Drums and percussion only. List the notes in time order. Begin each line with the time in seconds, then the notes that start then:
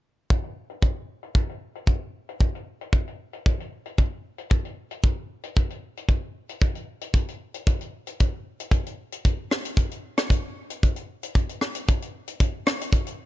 0.30 kick, closed hi-hat
0.43 closed hi-hat
0.70 closed hi-hat
0.82 kick, closed hi-hat
1.23 closed hi-hat
1.35 kick, closed hi-hat
1.49 closed hi-hat
1.75 closed hi-hat
1.87 kick, closed hi-hat
2.29 closed hi-hat
2.40 kick, closed hi-hat
2.55 closed hi-hat
2.81 closed hi-hat
2.93 kick, closed hi-hat
3.08 closed hi-hat
3.33 closed hi-hat
3.46 kick, closed hi-hat
3.60 closed hi-hat
3.86 closed hi-hat
3.98 kick, closed hi-hat
4.38 closed hi-hat
4.50 kick, closed hi-hat
4.65 closed hi-hat
4.91 closed hi-hat
5.04 kick, closed hi-hat
5.43 closed hi-hat
5.57 kick, closed hi-hat
5.70 closed hi-hat
5.97 closed hi-hat
6.09 kick, closed hi-hat
6.49 closed hi-hat
6.61 kick, closed hi-hat
6.75 closed hi-hat
7.01 closed hi-hat
7.14 kick, closed hi-hat
7.29 closed hi-hat
7.54 closed hi-hat
7.67 kick, closed hi-hat
7.81 closed hi-hat
8.07 closed hi-hat
8.20 kick, closed hi-hat
8.60 closed hi-hat
8.71 kick, closed hi-hat
8.87 closed hi-hat
9.12 closed hi-hat
9.25 kick, closed hi-hat
9.51 cross-stick
9.65 closed hi-hat
9.77 kick, closed hi-hat
9.91 closed hi-hat
10.18 cross-stick, closed hi-hat
10.30 kick, closed hi-hat
10.70 closed hi-hat
10.83 kick, closed hi-hat
10.96 closed hi-hat
11.23 closed hi-hat
11.35 kick, closed hi-hat
11.49 closed hi-hat
11.61 cross-stick
11.75 closed hi-hat
11.88 kick, closed hi-hat
12.02 closed hi-hat
12.28 closed hi-hat
12.40 kick, closed hi-hat
12.67 cross-stick
12.81 closed hi-hat
12.93 kick, closed hi-hat
13.07 closed hi-hat